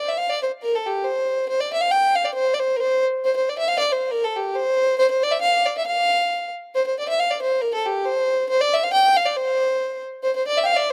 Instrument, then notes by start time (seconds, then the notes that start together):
fiddle
0.08 E5
0.17 F5
0.29 D5
0.43 C5
0.62 A#4
0.75 A4
0.86 G4
1.04 C5
1.49 C5
1.60 D5
1.73 E5
1.81 F5
1.91 G5
2.15 F5
2.25 D5
2.34 C5
2.54 D5
2.59 C5
2.76 A#4 C5
3.24 C5
3.36 C5
3.49 D5
3.58 E5
3.68 F5
3.79 D5
3.92 C5
4.10 A#4
4.24 A4
4.36 G4
4.55 C5
4.98 C5
5.11 C5
5.23 D5
5.31 E5
5.41 F5
5.66 D5
5.78 E5
5.86 F5
6.75 C5
6.87 C5
6.99 D5
7.08 E5
7.19 F5
7.31 D5
7.42 C5
7.61 A#4
7.74 A4
7.86 G4
8.05 C5
8.49 C5
8.61 D5
8.73 E5
8.83 F5
8.93 G5
9.16 F5
9.26 D5
9.36 C5
10.23 C5
10.36 C5
10.47 D5
10.57 E5
10.63 F5 G5
10.73 D5 E5